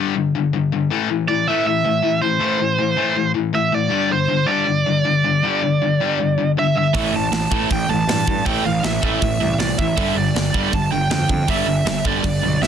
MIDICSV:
0, 0, Header, 1, 5, 480
1, 0, Start_track
1, 0, Key_signature, 0, "minor"
1, 0, Tempo, 377596
1, 1159, Time_signature, 4, 2, 24, 8
1, 16110, End_track
2, 0, Start_track
2, 0, Title_t, "Lead electric guitar"
2, 0, Program_c, 0, 29
2, 1628, Note_on_c, 0, 74, 71
2, 1855, Note_off_c, 0, 74, 0
2, 1877, Note_on_c, 0, 76, 76
2, 2107, Note_off_c, 0, 76, 0
2, 2122, Note_on_c, 0, 76, 93
2, 2787, Note_off_c, 0, 76, 0
2, 2817, Note_on_c, 0, 72, 84
2, 4210, Note_off_c, 0, 72, 0
2, 4509, Note_on_c, 0, 76, 100
2, 4759, Note_off_c, 0, 76, 0
2, 4759, Note_on_c, 0, 74, 92
2, 5236, Note_on_c, 0, 72, 89
2, 5247, Note_off_c, 0, 74, 0
2, 5678, Note_on_c, 0, 74, 90
2, 5725, Note_off_c, 0, 72, 0
2, 8279, Note_off_c, 0, 74, 0
2, 8376, Note_on_c, 0, 76, 100
2, 8606, Note_off_c, 0, 76, 0
2, 8622, Note_on_c, 0, 76, 96
2, 9051, Note_off_c, 0, 76, 0
2, 9101, Note_on_c, 0, 81, 109
2, 9754, Note_off_c, 0, 81, 0
2, 9821, Note_on_c, 0, 79, 104
2, 10032, Note_off_c, 0, 79, 0
2, 10032, Note_on_c, 0, 81, 97
2, 10753, Note_off_c, 0, 81, 0
2, 10758, Note_on_c, 0, 79, 94
2, 10976, Note_off_c, 0, 79, 0
2, 11003, Note_on_c, 0, 77, 90
2, 11240, Note_off_c, 0, 77, 0
2, 11245, Note_on_c, 0, 76, 82
2, 11483, Note_off_c, 0, 76, 0
2, 11505, Note_on_c, 0, 76, 92
2, 12193, Note_off_c, 0, 76, 0
2, 12198, Note_on_c, 0, 74, 92
2, 12417, Note_off_c, 0, 74, 0
2, 12447, Note_on_c, 0, 76, 92
2, 12930, Note_off_c, 0, 76, 0
2, 12935, Note_on_c, 0, 74, 94
2, 13653, Note_on_c, 0, 81, 100
2, 13666, Note_off_c, 0, 74, 0
2, 13873, Note_off_c, 0, 81, 0
2, 13878, Note_on_c, 0, 79, 84
2, 14100, Note_off_c, 0, 79, 0
2, 14129, Note_on_c, 0, 79, 98
2, 14609, Note_on_c, 0, 76, 91
2, 14617, Note_off_c, 0, 79, 0
2, 15336, Note_off_c, 0, 76, 0
2, 15341, Note_on_c, 0, 74, 86
2, 16046, Note_off_c, 0, 74, 0
2, 16051, Note_on_c, 0, 76, 84
2, 16110, Note_off_c, 0, 76, 0
2, 16110, End_track
3, 0, Start_track
3, 0, Title_t, "Distorted electric guitar"
3, 0, Program_c, 1, 30
3, 0, Note_on_c, 1, 43, 83
3, 0, Note_on_c, 1, 50, 94
3, 0, Note_on_c, 1, 55, 96
3, 175, Note_off_c, 1, 43, 0
3, 179, Note_off_c, 1, 50, 0
3, 181, Note_off_c, 1, 55, 0
3, 191, Note_on_c, 1, 43, 74
3, 203, Note_on_c, 1, 50, 73
3, 412, Note_off_c, 1, 43, 0
3, 418, Note_off_c, 1, 50, 0
3, 444, Note_on_c, 1, 43, 64
3, 449, Note_on_c, 1, 50, 68
3, 658, Note_off_c, 1, 43, 0
3, 660, Note_off_c, 1, 50, 0
3, 676, Note_on_c, 1, 50, 83
3, 678, Note_on_c, 1, 43, 73
3, 894, Note_off_c, 1, 50, 0
3, 895, Note_off_c, 1, 43, 0
3, 919, Note_on_c, 1, 43, 61
3, 924, Note_on_c, 1, 50, 67
3, 1135, Note_off_c, 1, 43, 0
3, 1137, Note_off_c, 1, 50, 0
3, 1150, Note_on_c, 1, 45, 84
3, 1155, Note_on_c, 1, 52, 90
3, 1161, Note_on_c, 1, 57, 88
3, 1375, Note_off_c, 1, 45, 0
3, 1382, Note_off_c, 1, 52, 0
3, 1385, Note_off_c, 1, 57, 0
3, 1390, Note_on_c, 1, 45, 62
3, 1395, Note_on_c, 1, 52, 72
3, 1610, Note_off_c, 1, 45, 0
3, 1612, Note_off_c, 1, 52, 0
3, 1632, Note_on_c, 1, 52, 82
3, 1633, Note_on_c, 1, 45, 73
3, 1850, Note_off_c, 1, 45, 0
3, 1850, Note_off_c, 1, 52, 0
3, 1878, Note_on_c, 1, 45, 85
3, 1886, Note_on_c, 1, 52, 90
3, 1893, Note_on_c, 1, 57, 104
3, 2092, Note_off_c, 1, 45, 0
3, 2096, Note_off_c, 1, 52, 0
3, 2107, Note_on_c, 1, 45, 77
3, 2110, Note_off_c, 1, 57, 0
3, 2111, Note_on_c, 1, 52, 70
3, 2327, Note_off_c, 1, 45, 0
3, 2329, Note_off_c, 1, 52, 0
3, 2345, Note_on_c, 1, 45, 68
3, 2351, Note_on_c, 1, 52, 72
3, 2559, Note_off_c, 1, 45, 0
3, 2568, Note_off_c, 1, 52, 0
3, 2574, Note_on_c, 1, 45, 72
3, 2582, Note_on_c, 1, 52, 87
3, 2800, Note_off_c, 1, 45, 0
3, 2804, Note_off_c, 1, 52, 0
3, 2817, Note_on_c, 1, 45, 60
3, 2824, Note_on_c, 1, 52, 72
3, 3028, Note_off_c, 1, 45, 0
3, 3044, Note_off_c, 1, 52, 0
3, 3044, Note_on_c, 1, 45, 92
3, 3056, Note_on_c, 1, 57, 95
3, 3057, Note_on_c, 1, 52, 91
3, 3283, Note_off_c, 1, 45, 0
3, 3284, Note_off_c, 1, 52, 0
3, 3290, Note_off_c, 1, 57, 0
3, 3300, Note_on_c, 1, 52, 76
3, 3301, Note_on_c, 1, 45, 67
3, 3521, Note_off_c, 1, 52, 0
3, 3522, Note_off_c, 1, 45, 0
3, 3538, Note_on_c, 1, 45, 67
3, 3540, Note_on_c, 1, 52, 76
3, 3753, Note_off_c, 1, 45, 0
3, 3758, Note_off_c, 1, 52, 0
3, 3768, Note_on_c, 1, 45, 85
3, 3774, Note_on_c, 1, 52, 89
3, 3784, Note_on_c, 1, 57, 106
3, 3990, Note_off_c, 1, 45, 0
3, 3999, Note_off_c, 1, 52, 0
3, 4005, Note_on_c, 1, 45, 75
3, 4013, Note_off_c, 1, 57, 0
3, 4014, Note_on_c, 1, 52, 76
3, 4233, Note_off_c, 1, 45, 0
3, 4233, Note_off_c, 1, 52, 0
3, 4248, Note_on_c, 1, 52, 73
3, 4249, Note_on_c, 1, 45, 66
3, 4471, Note_off_c, 1, 45, 0
3, 4474, Note_off_c, 1, 52, 0
3, 4486, Note_on_c, 1, 45, 73
3, 4493, Note_on_c, 1, 52, 78
3, 4713, Note_off_c, 1, 45, 0
3, 4716, Note_off_c, 1, 52, 0
3, 4732, Note_on_c, 1, 45, 69
3, 4734, Note_on_c, 1, 52, 74
3, 4949, Note_on_c, 1, 43, 89
3, 4953, Note_off_c, 1, 45, 0
3, 4957, Note_off_c, 1, 52, 0
3, 4958, Note_on_c, 1, 50, 97
3, 4962, Note_on_c, 1, 55, 96
3, 5194, Note_off_c, 1, 43, 0
3, 5198, Note_off_c, 1, 50, 0
3, 5200, Note_off_c, 1, 55, 0
3, 5211, Note_on_c, 1, 43, 66
3, 5214, Note_on_c, 1, 50, 74
3, 5429, Note_off_c, 1, 43, 0
3, 5436, Note_off_c, 1, 50, 0
3, 5444, Note_on_c, 1, 43, 69
3, 5452, Note_on_c, 1, 50, 77
3, 5658, Note_off_c, 1, 43, 0
3, 5661, Note_off_c, 1, 50, 0
3, 5673, Note_on_c, 1, 43, 87
3, 5676, Note_on_c, 1, 50, 96
3, 5686, Note_on_c, 1, 55, 100
3, 5902, Note_off_c, 1, 43, 0
3, 5910, Note_off_c, 1, 50, 0
3, 5918, Note_on_c, 1, 43, 71
3, 5921, Note_off_c, 1, 55, 0
3, 5925, Note_on_c, 1, 50, 77
3, 6147, Note_off_c, 1, 43, 0
3, 6151, Note_off_c, 1, 50, 0
3, 6181, Note_on_c, 1, 50, 73
3, 6182, Note_on_c, 1, 43, 68
3, 6399, Note_off_c, 1, 50, 0
3, 6400, Note_off_c, 1, 43, 0
3, 6418, Note_on_c, 1, 43, 75
3, 6423, Note_on_c, 1, 50, 86
3, 6637, Note_off_c, 1, 43, 0
3, 6640, Note_off_c, 1, 50, 0
3, 6664, Note_on_c, 1, 43, 76
3, 6673, Note_on_c, 1, 50, 81
3, 6880, Note_off_c, 1, 43, 0
3, 6885, Note_off_c, 1, 50, 0
3, 6904, Note_on_c, 1, 43, 78
3, 6911, Note_on_c, 1, 50, 96
3, 6920, Note_on_c, 1, 55, 94
3, 7130, Note_off_c, 1, 43, 0
3, 7133, Note_off_c, 1, 50, 0
3, 7138, Note_off_c, 1, 55, 0
3, 7155, Note_on_c, 1, 43, 61
3, 7155, Note_on_c, 1, 50, 77
3, 7366, Note_off_c, 1, 43, 0
3, 7366, Note_off_c, 1, 50, 0
3, 7395, Note_on_c, 1, 43, 67
3, 7399, Note_on_c, 1, 50, 80
3, 7605, Note_off_c, 1, 43, 0
3, 7607, Note_off_c, 1, 50, 0
3, 7631, Note_on_c, 1, 43, 92
3, 7638, Note_on_c, 1, 50, 91
3, 7641, Note_on_c, 1, 55, 92
3, 7853, Note_off_c, 1, 43, 0
3, 7856, Note_off_c, 1, 50, 0
3, 7858, Note_off_c, 1, 55, 0
3, 7880, Note_on_c, 1, 43, 72
3, 7885, Note_on_c, 1, 50, 75
3, 8088, Note_off_c, 1, 43, 0
3, 8091, Note_off_c, 1, 50, 0
3, 8107, Note_on_c, 1, 43, 65
3, 8116, Note_on_c, 1, 50, 79
3, 8322, Note_off_c, 1, 43, 0
3, 8326, Note_off_c, 1, 50, 0
3, 8354, Note_on_c, 1, 43, 71
3, 8363, Note_on_c, 1, 50, 79
3, 8565, Note_off_c, 1, 43, 0
3, 8569, Note_off_c, 1, 50, 0
3, 8589, Note_on_c, 1, 43, 59
3, 8599, Note_on_c, 1, 50, 71
3, 8802, Note_off_c, 1, 43, 0
3, 8807, Note_off_c, 1, 50, 0
3, 8833, Note_on_c, 1, 45, 79
3, 8843, Note_on_c, 1, 57, 98
3, 8845, Note_on_c, 1, 52, 94
3, 9054, Note_off_c, 1, 45, 0
3, 9059, Note_off_c, 1, 57, 0
3, 9060, Note_off_c, 1, 52, 0
3, 9074, Note_on_c, 1, 45, 62
3, 9079, Note_on_c, 1, 52, 68
3, 9285, Note_off_c, 1, 45, 0
3, 9287, Note_off_c, 1, 52, 0
3, 9321, Note_on_c, 1, 45, 72
3, 9323, Note_on_c, 1, 52, 86
3, 9523, Note_off_c, 1, 45, 0
3, 9529, Note_off_c, 1, 52, 0
3, 9538, Note_on_c, 1, 45, 86
3, 9547, Note_on_c, 1, 52, 93
3, 9549, Note_on_c, 1, 57, 93
3, 9767, Note_off_c, 1, 45, 0
3, 9771, Note_off_c, 1, 52, 0
3, 9772, Note_off_c, 1, 57, 0
3, 9791, Note_on_c, 1, 45, 77
3, 9792, Note_on_c, 1, 52, 84
3, 10004, Note_off_c, 1, 45, 0
3, 10005, Note_off_c, 1, 52, 0
3, 10038, Note_on_c, 1, 45, 67
3, 10047, Note_on_c, 1, 52, 80
3, 10247, Note_off_c, 1, 45, 0
3, 10252, Note_off_c, 1, 52, 0
3, 10275, Note_on_c, 1, 45, 74
3, 10281, Note_on_c, 1, 52, 82
3, 10486, Note_off_c, 1, 45, 0
3, 10489, Note_off_c, 1, 52, 0
3, 10501, Note_on_c, 1, 45, 72
3, 10512, Note_on_c, 1, 52, 76
3, 10719, Note_off_c, 1, 45, 0
3, 10725, Note_off_c, 1, 52, 0
3, 10741, Note_on_c, 1, 45, 82
3, 10745, Note_on_c, 1, 52, 89
3, 10753, Note_on_c, 1, 57, 89
3, 10969, Note_off_c, 1, 45, 0
3, 10971, Note_off_c, 1, 52, 0
3, 10975, Note_off_c, 1, 57, 0
3, 10984, Note_on_c, 1, 45, 64
3, 10986, Note_on_c, 1, 52, 74
3, 11201, Note_off_c, 1, 45, 0
3, 11202, Note_off_c, 1, 52, 0
3, 11230, Note_on_c, 1, 45, 69
3, 11235, Note_on_c, 1, 52, 82
3, 11439, Note_off_c, 1, 45, 0
3, 11447, Note_off_c, 1, 52, 0
3, 11454, Note_on_c, 1, 45, 89
3, 11464, Note_on_c, 1, 52, 88
3, 11467, Note_on_c, 1, 57, 94
3, 11686, Note_off_c, 1, 45, 0
3, 11691, Note_off_c, 1, 52, 0
3, 11693, Note_off_c, 1, 57, 0
3, 11708, Note_on_c, 1, 45, 72
3, 11712, Note_on_c, 1, 52, 85
3, 11924, Note_off_c, 1, 45, 0
3, 11926, Note_off_c, 1, 52, 0
3, 11952, Note_on_c, 1, 45, 67
3, 11956, Note_on_c, 1, 52, 72
3, 12166, Note_off_c, 1, 45, 0
3, 12168, Note_off_c, 1, 52, 0
3, 12202, Note_on_c, 1, 45, 69
3, 12206, Note_on_c, 1, 52, 84
3, 12411, Note_off_c, 1, 45, 0
3, 12414, Note_off_c, 1, 52, 0
3, 12452, Note_on_c, 1, 45, 68
3, 12452, Note_on_c, 1, 52, 74
3, 12657, Note_off_c, 1, 45, 0
3, 12657, Note_off_c, 1, 52, 0
3, 12664, Note_on_c, 1, 43, 89
3, 12670, Note_on_c, 1, 50, 82
3, 12676, Note_on_c, 1, 55, 90
3, 12893, Note_off_c, 1, 43, 0
3, 12896, Note_off_c, 1, 50, 0
3, 12899, Note_off_c, 1, 55, 0
3, 12917, Note_on_c, 1, 43, 64
3, 12919, Note_on_c, 1, 50, 71
3, 13130, Note_off_c, 1, 43, 0
3, 13131, Note_off_c, 1, 50, 0
3, 13143, Note_on_c, 1, 43, 71
3, 13154, Note_on_c, 1, 50, 74
3, 13364, Note_off_c, 1, 43, 0
3, 13369, Note_off_c, 1, 50, 0
3, 13387, Note_on_c, 1, 43, 84
3, 13389, Note_on_c, 1, 50, 97
3, 13395, Note_on_c, 1, 55, 97
3, 13616, Note_off_c, 1, 43, 0
3, 13617, Note_off_c, 1, 50, 0
3, 13620, Note_off_c, 1, 55, 0
3, 13639, Note_on_c, 1, 43, 73
3, 13644, Note_on_c, 1, 50, 74
3, 13852, Note_off_c, 1, 43, 0
3, 13855, Note_off_c, 1, 50, 0
3, 13891, Note_on_c, 1, 43, 76
3, 13892, Note_on_c, 1, 50, 73
3, 14094, Note_off_c, 1, 43, 0
3, 14099, Note_off_c, 1, 50, 0
3, 14109, Note_on_c, 1, 43, 81
3, 14113, Note_on_c, 1, 50, 81
3, 14328, Note_off_c, 1, 43, 0
3, 14330, Note_off_c, 1, 50, 0
3, 14357, Note_on_c, 1, 43, 71
3, 14362, Note_on_c, 1, 50, 84
3, 14573, Note_off_c, 1, 43, 0
3, 14575, Note_off_c, 1, 50, 0
3, 14596, Note_on_c, 1, 43, 93
3, 14599, Note_on_c, 1, 50, 92
3, 14604, Note_on_c, 1, 55, 100
3, 14815, Note_off_c, 1, 43, 0
3, 14815, Note_off_c, 1, 50, 0
3, 14827, Note_off_c, 1, 55, 0
3, 14830, Note_on_c, 1, 50, 74
3, 14831, Note_on_c, 1, 43, 66
3, 15050, Note_off_c, 1, 50, 0
3, 15051, Note_off_c, 1, 43, 0
3, 15069, Note_on_c, 1, 43, 76
3, 15075, Note_on_c, 1, 50, 77
3, 15291, Note_off_c, 1, 43, 0
3, 15293, Note_off_c, 1, 50, 0
3, 15315, Note_on_c, 1, 43, 94
3, 15317, Note_on_c, 1, 55, 97
3, 15319, Note_on_c, 1, 50, 94
3, 15529, Note_off_c, 1, 43, 0
3, 15531, Note_off_c, 1, 50, 0
3, 15544, Note_on_c, 1, 43, 69
3, 15545, Note_off_c, 1, 55, 0
3, 15546, Note_on_c, 1, 50, 77
3, 15769, Note_off_c, 1, 43, 0
3, 15770, Note_off_c, 1, 50, 0
3, 15783, Note_on_c, 1, 43, 67
3, 15789, Note_on_c, 1, 50, 69
3, 16009, Note_off_c, 1, 43, 0
3, 16012, Note_off_c, 1, 50, 0
3, 16033, Note_on_c, 1, 43, 70
3, 16038, Note_on_c, 1, 50, 86
3, 16110, Note_off_c, 1, 43, 0
3, 16110, Note_off_c, 1, 50, 0
3, 16110, End_track
4, 0, Start_track
4, 0, Title_t, "Picked electric bass"
4, 0, Program_c, 2, 34
4, 8827, Note_on_c, 2, 33, 91
4, 8994, Note_off_c, 2, 33, 0
4, 9067, Note_on_c, 2, 33, 77
4, 9235, Note_off_c, 2, 33, 0
4, 9301, Note_on_c, 2, 33, 96
4, 9471, Note_off_c, 2, 33, 0
4, 9546, Note_on_c, 2, 33, 82
4, 9714, Note_off_c, 2, 33, 0
4, 9799, Note_on_c, 2, 33, 91
4, 9963, Note_off_c, 2, 33, 0
4, 10028, Note_on_c, 2, 33, 90
4, 10196, Note_off_c, 2, 33, 0
4, 10265, Note_on_c, 2, 43, 90
4, 10434, Note_off_c, 2, 43, 0
4, 10519, Note_on_c, 2, 43, 82
4, 10683, Note_off_c, 2, 43, 0
4, 10755, Note_on_c, 2, 33, 92
4, 10921, Note_off_c, 2, 33, 0
4, 11014, Note_on_c, 2, 33, 81
4, 11173, Note_off_c, 2, 33, 0
4, 11242, Note_on_c, 2, 33, 91
4, 11405, Note_off_c, 2, 33, 0
4, 11477, Note_on_c, 2, 33, 82
4, 11642, Note_off_c, 2, 33, 0
4, 11720, Note_on_c, 2, 33, 91
4, 11884, Note_off_c, 2, 33, 0
4, 11954, Note_on_c, 2, 36, 82
4, 12121, Note_off_c, 2, 36, 0
4, 12184, Note_on_c, 2, 36, 90
4, 12355, Note_off_c, 2, 36, 0
4, 12445, Note_on_c, 2, 33, 77
4, 12608, Note_off_c, 2, 33, 0
4, 12679, Note_on_c, 2, 31, 89
4, 12845, Note_off_c, 2, 31, 0
4, 12904, Note_on_c, 2, 31, 83
4, 13076, Note_off_c, 2, 31, 0
4, 13158, Note_on_c, 2, 31, 91
4, 13325, Note_off_c, 2, 31, 0
4, 13395, Note_on_c, 2, 31, 80
4, 13563, Note_off_c, 2, 31, 0
4, 13640, Note_on_c, 2, 31, 87
4, 13806, Note_off_c, 2, 31, 0
4, 13883, Note_on_c, 2, 31, 87
4, 14048, Note_off_c, 2, 31, 0
4, 14117, Note_on_c, 2, 41, 90
4, 14285, Note_off_c, 2, 41, 0
4, 14358, Note_on_c, 2, 41, 80
4, 14526, Note_off_c, 2, 41, 0
4, 14598, Note_on_c, 2, 31, 91
4, 14767, Note_off_c, 2, 31, 0
4, 14823, Note_on_c, 2, 31, 86
4, 14997, Note_off_c, 2, 31, 0
4, 15063, Note_on_c, 2, 31, 95
4, 15238, Note_off_c, 2, 31, 0
4, 15313, Note_on_c, 2, 31, 84
4, 15484, Note_off_c, 2, 31, 0
4, 15559, Note_on_c, 2, 31, 96
4, 15729, Note_off_c, 2, 31, 0
4, 15793, Note_on_c, 2, 35, 92
4, 15966, Note_off_c, 2, 35, 0
4, 16034, Note_on_c, 2, 35, 86
4, 16110, Note_off_c, 2, 35, 0
4, 16110, End_track
5, 0, Start_track
5, 0, Title_t, "Drums"
5, 8830, Note_on_c, 9, 36, 113
5, 8830, Note_on_c, 9, 46, 58
5, 8957, Note_off_c, 9, 36, 0
5, 8957, Note_off_c, 9, 46, 0
5, 9312, Note_on_c, 9, 46, 53
5, 9318, Note_on_c, 9, 38, 114
5, 9439, Note_off_c, 9, 46, 0
5, 9445, Note_off_c, 9, 38, 0
5, 9554, Note_on_c, 9, 36, 85
5, 9681, Note_off_c, 9, 36, 0
5, 9797, Note_on_c, 9, 36, 113
5, 9798, Note_on_c, 9, 46, 52
5, 9924, Note_off_c, 9, 36, 0
5, 9925, Note_off_c, 9, 46, 0
5, 10281, Note_on_c, 9, 46, 60
5, 10288, Note_on_c, 9, 38, 115
5, 10408, Note_off_c, 9, 46, 0
5, 10415, Note_off_c, 9, 38, 0
5, 10519, Note_on_c, 9, 36, 88
5, 10646, Note_off_c, 9, 36, 0
5, 10755, Note_on_c, 9, 46, 56
5, 10757, Note_on_c, 9, 36, 118
5, 10882, Note_off_c, 9, 46, 0
5, 10884, Note_off_c, 9, 36, 0
5, 11237, Note_on_c, 9, 46, 59
5, 11243, Note_on_c, 9, 38, 104
5, 11364, Note_off_c, 9, 46, 0
5, 11370, Note_off_c, 9, 38, 0
5, 11479, Note_on_c, 9, 36, 83
5, 11606, Note_off_c, 9, 36, 0
5, 11721, Note_on_c, 9, 36, 107
5, 11723, Note_on_c, 9, 46, 58
5, 11849, Note_off_c, 9, 36, 0
5, 11850, Note_off_c, 9, 46, 0
5, 12200, Note_on_c, 9, 46, 60
5, 12206, Note_on_c, 9, 38, 113
5, 12327, Note_off_c, 9, 46, 0
5, 12333, Note_off_c, 9, 38, 0
5, 12442, Note_on_c, 9, 36, 82
5, 12569, Note_off_c, 9, 36, 0
5, 12681, Note_on_c, 9, 46, 55
5, 12682, Note_on_c, 9, 36, 114
5, 12808, Note_off_c, 9, 46, 0
5, 12809, Note_off_c, 9, 36, 0
5, 13169, Note_on_c, 9, 46, 56
5, 13175, Note_on_c, 9, 38, 113
5, 13296, Note_off_c, 9, 46, 0
5, 13303, Note_off_c, 9, 38, 0
5, 13403, Note_on_c, 9, 36, 84
5, 13530, Note_off_c, 9, 36, 0
5, 13635, Note_on_c, 9, 46, 53
5, 13642, Note_on_c, 9, 36, 106
5, 13763, Note_off_c, 9, 46, 0
5, 13769, Note_off_c, 9, 36, 0
5, 14119, Note_on_c, 9, 46, 58
5, 14125, Note_on_c, 9, 38, 114
5, 14246, Note_off_c, 9, 46, 0
5, 14252, Note_off_c, 9, 38, 0
5, 14357, Note_on_c, 9, 36, 80
5, 14485, Note_off_c, 9, 36, 0
5, 14595, Note_on_c, 9, 46, 59
5, 14598, Note_on_c, 9, 36, 111
5, 14723, Note_off_c, 9, 46, 0
5, 14726, Note_off_c, 9, 36, 0
5, 15083, Note_on_c, 9, 46, 59
5, 15089, Note_on_c, 9, 38, 111
5, 15210, Note_off_c, 9, 46, 0
5, 15216, Note_off_c, 9, 38, 0
5, 15319, Note_on_c, 9, 36, 88
5, 15446, Note_off_c, 9, 36, 0
5, 15561, Note_on_c, 9, 36, 111
5, 15565, Note_on_c, 9, 46, 57
5, 15688, Note_off_c, 9, 36, 0
5, 15692, Note_off_c, 9, 46, 0
5, 16056, Note_on_c, 9, 38, 61
5, 16110, Note_off_c, 9, 38, 0
5, 16110, End_track
0, 0, End_of_file